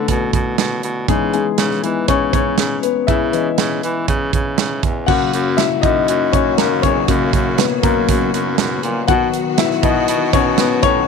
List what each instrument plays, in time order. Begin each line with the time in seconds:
Already playing: grand piano D3 A3 B3 C#4 A4 B4
0.08 baritone saxophone B2, kick, closed hi-hat
0.33 baritone saxophone B2, kick, closed hi-hat
0.58 baritone saxophone B2, snare, closed hi-hat
0.83 baritone saxophone B2, closed hi-hat
1.08 baritone saxophone C#3, grand piano E3 G#3 B3 D#4 G#4, kick, closed hi-hat
1.34 grand piano G#3 G#4, closed hi-hat
1.58 baritone saxophone C#3, snare, closed hi-hat
1.71 snare
1.83 baritone saxophone E3, grand piano E3 B3 D#4 B4, closed hi-hat
2.08 baritone saxophone C#3, grand piano C#4 C#5, kick, closed hi-hat
2.33 baritone saxophone C#3, grand piano C#4 C#5, kick, closed hi-hat
2.58 baritone saxophone C#3, snare, closed hi-hat
2.82 grand piano B3 B4, closed hi-hat
3.07 baritone saxophone C#3, grand piano E4 E5, kick, closed hi-hat
3.33 grand piano E3 B3 D#5, closed hi-hat
3.58 baritone saxophone C#3, snare, closed hi-hat
3.83 baritone saxophone E3, closed hi-hat
4.08 baritone saxophone C#3, kick, closed hi-hat
4.33 baritone saxophone C#3, kick, closed hi-hat
4.58 baritone saxophone C#3, snare, closed hi-hat
4.83 baritone saxophone E2, kick, closed hi-hat
5.06 baritone saxophone F#2, grand piano C#3 F#3 A#3 F#4 F#5, string section C#3 F#3 A#3 F#4, kick, crash
5.33 baritone saxophone F#2, closed hi-hat
5.57 grand piano E4 E5, snare, closed hi-hat
5.82 baritone saxophone F#2, grand piano D#4 D#5, kick, closed hi-hat
6.08 baritone saxophone F#2, closed hi-hat
6.32 baritone saxophone F#2, grand piano C#4 C#5, kick, closed hi-hat
6.57 baritone saxophone F#2, grand piano A#3 A#4, snare, closed hi-hat
6.82 baritone saxophone E2, grand piano C#4 C#5, kick, closed hi-hat
7.08 baritone saxophone F#2, grand piano C#3 F#3 A#3, kick, closed hi-hat
7.33 baritone saxophone F#2, kick, closed hi-hat
7.57 grand piano B3 B4, snare, closed hi-hat
7.82 baritone saxophone F#2, grand piano A#3 A#4, kick, closed hi-hat
8.09 baritone saxophone F#2, kick, closed hi-hat
8.33 baritone saxophone F#2, closed hi-hat
8.58 baritone saxophone F#2, snare, closed hi-hat
8.83 baritone saxophone A#2, closed hi-hat
9.08 baritone saxophone B2, grand piano D#3 F#3 B3 F#4 F#5, string section D#3 B3 F#4, kick, closed hi-hat
9.34 closed hi-hat
9.58 grand piano E4 E5, snare, closed hi-hat
9.71 snare
9.83 baritone saxophone B2, grand piano D#4 D#5, kick, closed hi-hat
10.08 baritone saxophone B2, closed hi-hat
10.33 baritone saxophone B2, grand piano C#4 C#5, kick, closed hi-hat
10.58 baritone saxophone B2, grand piano B3 B4, snare, closed hi-hat
10.83 baritone saxophone A2, grand piano C#4 C#5, kick, closed hi-hat